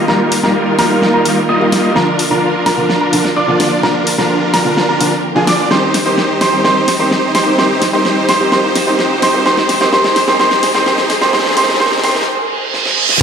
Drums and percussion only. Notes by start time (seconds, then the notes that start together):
0.08 snare
0.32 open hi-hat
0.43 snare
0.79 snare, open hi-hat
1.02 snare
1.25 open hi-hat
1.72 snare, open hi-hat
1.96 snare
2.19 open hi-hat
2.66 snare, open hi-hat
2.90 snare
3.13 open hi-hat
3.25 snare
3.60 snare, open hi-hat
3.83 snare
4.07 open hi-hat
4.19 snare
4.54 snare, open hi-hat
4.77 snare
5.01 open hi-hat
5.47 snare, open hi-hat
5.71 snare
5.94 snare, open hi-hat
6.18 snare
6.41 snare, open hi-hat
6.64 snare
6.88 snare, open hi-hat
7.11 snare
7.35 snare, open hi-hat
7.58 snare
7.82 snare, open hi-hat
8.05 snare
8.29 snare, open hi-hat
8.52 snare
8.76 snare, open hi-hat
8.99 snare
9.22 snare, open hi-hat
9.46 snare
9.57 snare
9.69 snare, open hi-hat
9.81 snare
9.93 snare
10.04 snare
10.16 snare, open hi-hat
10.28 snare
10.39 snare
10.51 snare
10.63 snare, open hi-hat
10.75 snare
10.86 snare
10.98 snare
11.10 snare, open hi-hat
11.21 snare
11.33 snare
11.39 snare
11.45 snare
11.51 snare
11.57 snare, open hi-hat
11.63 snare
11.69 snare
11.74 snare
11.80 snare
11.86 snare
11.92 snare
11.98 snare
12.04 snare, open hi-hat
12.09 snare
12.15 snare
12.21 snare
12.74 snare
12.86 snare
13.09 snare